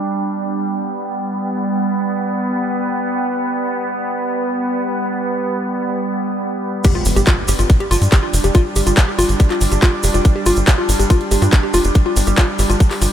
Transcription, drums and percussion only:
6.84 kick, closed hi-hat, crash, shaker
7.05 open hi-hat, shaker
7.17 closed hi-hat, shaker
7.26 kick, clap, closed hi-hat, shaker
7.48 open hi-hat, shaker
7.59 closed hi-hat, shaker
7.70 kick, closed hi-hat, shaker
7.80 closed hi-hat
7.91 open hi-hat, shaker
8.02 closed hi-hat, shaker
8.12 kick, clap, closed hi-hat, shaker
8.34 open hi-hat, shaker
8.44 closed hi-hat, shaker
8.55 kick, closed hi-hat, shaker
8.76 open hi-hat, shaker
8.87 closed hi-hat, shaker
8.97 kick, clap, closed hi-hat, shaker
9.19 open hi-hat, shaker
9.29 closed hi-hat, shaker
9.40 kick, closed hi-hat, shaker
9.51 clap, closed hi-hat
9.61 open hi-hat, shaker
9.72 closed hi-hat, shaker
9.82 kick, clap, closed hi-hat, shaker
10.03 open hi-hat, shaker
10.14 closed hi-hat, shaker
10.25 kick, closed hi-hat, shaker
10.46 open hi-hat, shaker
10.56 closed hi-hat, shaker
10.68 kick, clap, closed hi-hat, shaker
10.89 open hi-hat, shaker
11.00 closed hi-hat, shaker
11.10 kick, closed hi-hat, shaker
11.21 closed hi-hat
11.31 open hi-hat, shaker
11.42 closed hi-hat, shaker
11.53 kick, clap, closed hi-hat, shaker
11.74 open hi-hat, shaker
11.84 closed hi-hat, shaker
11.95 kick, closed hi-hat, shaker
12.16 open hi-hat, shaker
12.27 closed hi-hat, shaker
12.38 kick, clap, closed hi-hat, shaker
12.59 open hi-hat, shaker
12.70 closed hi-hat, shaker
12.80 kick, closed hi-hat, shaker
12.91 clap, open hi-hat
13.02 open hi-hat, shaker

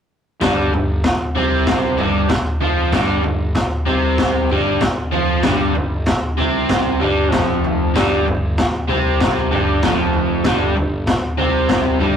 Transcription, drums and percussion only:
0.41 kick, snare, floor tom
0.74 floor tom
1.04 kick, snare, floor tom
1.35 floor tom
1.67 kick, snare, floor tom
1.98 floor tom
2.29 kick, snare, floor tom
2.60 floor tom
2.92 kick, snare, floor tom
3.24 floor tom
3.55 kick, snare, floor tom
3.86 floor tom
4.18 kick, snare, floor tom
4.50 floor tom
4.81 kick, snare, floor tom
5.12 floor tom
5.43 kick, snare, floor tom
5.75 floor tom
6.06 kick, snare, floor tom
6.38 floor tom
6.69 kick, snare, floor tom
7.01 floor tom
7.32 kick, snare, floor tom
7.64 floor tom
7.96 kick, snare, floor tom
8.28 floor tom
8.58 kick, snare, floor tom
8.89 floor tom
9.20 kick, snare, floor tom
9.52 floor tom
9.83 kick, snare, floor tom
10.13 floor tom
10.44 kick, snare, floor tom
10.77 floor tom
11.07 kick, snare, floor tom
11.38 floor tom
11.69 kick, snare, floor tom
12.01 floor tom

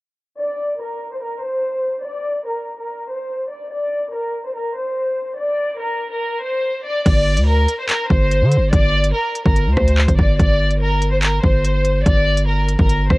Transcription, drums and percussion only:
7.06 kick, closed hi-hat, crash
7.37 closed hi-hat
7.68 closed hi-hat
7.89 clap, closed hi-hat
8.10 kick
8.31 closed hi-hat
8.51 closed hi-hat
8.73 kick, closed hi-hat
9.04 closed hi-hat
9.35 closed hi-hat
9.46 kick
9.56 closed hi-hat
9.77 kick, cross-stick
9.88 closed hi-hat
9.98 clap
10.08 kick, closed hi-hat
10.19 kick
10.39 kick, closed hi-hat
10.71 closed hi-hat
11.02 closed hi-hat
11.23 clap, closed hi-hat
11.44 kick
11.65 closed hi-hat
11.85 closed hi-hat
12.06 kick, closed hi-hat
12.37 closed hi-hat
12.69 closed hi-hat
12.79 kick
12.89 closed hi-hat
13.10 kick, cross-stick

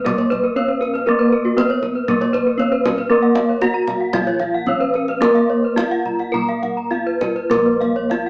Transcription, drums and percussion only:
0.06 kendang high, kendang low
0.18 kendang slap
0.32 kendang slap, kendang low
0.57 kendang slap
0.82 kendang slap
0.95 kendang slap
1.58 kendang slap, kendang high
1.83 kendang slap, kendang low
2.08 kendang low
2.22 kendang slap
2.34 kendang slap, kendang low
2.59 kendang slap
2.86 kendang slap, kendang high, kendang low
2.98 kendang slap
3.35 kendang high
3.61 kendang slap, kendang high
3.88 kendang slap, kendang high, kendang low
4.13 kendang high, kendang low
4.27 kendang slap
4.40 kendang slap, kendang low
4.66 kendang slap, kendang low
4.94 kendang slap
5.08 kendang slap
5.22 kendang high
5.35 kendang slap
5.78 kendang high
6.05 kendang slap, kendang low
6.19 kendang slap
6.34 kendang low
6.48 kendang slap
6.63 kendang slap, kendang low
6.92 kendang slap
7.21 kendang slap, kendang high, kendang low
7.36 kendang slap
7.51 kendang high, kendang low
7.82 kendang slap, kendang low
8.11 kendang high

